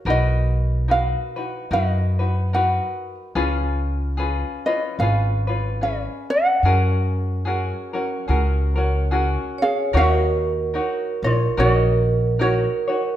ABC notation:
X:1
M:4/4
L:1/16
Q:"Swing" 1/4=73
K:F#
V:1 name="Ukulele"
d4 e4 d4 f3 z | z6 d2 e4 c2 f2- | f12 z2 [Ge]2 | [K:Ebm] [Ge]6 [Fd]2 [Ge]4 [Gd]4 |]
V:2 name="Vibraphone"
z16 | z16 | z12 z2 c2 | [K:Ebm] B6 B2 B4 B4 |]
V:3 name="Ukulele"
[DFAB]4 [DFAB]2 [DFB]2 [DFAB]2 [DFB]2 [DFAB]4 | [CEGB]4 [CEGB]2 [CEB]2 [CEGB]2 [CEB]2 [CGB]4 | [CFGA]4 [CFGA]2 [CFA]2 [CFGA]2 [CFA]2 [CFGA]4 | [K:Ebm] [EGBd]4 [EGBd]2 [Ed]2 [EGBd]4 [EGBd]2 [EGd]2 |]
V:4 name="Upright bass" clef=bass
B,,,8 F,,8 | C,,8 G,,,8 | F,,8 C,,8 | [K:Ebm] E,,6 B,,,2 B,,,8 |]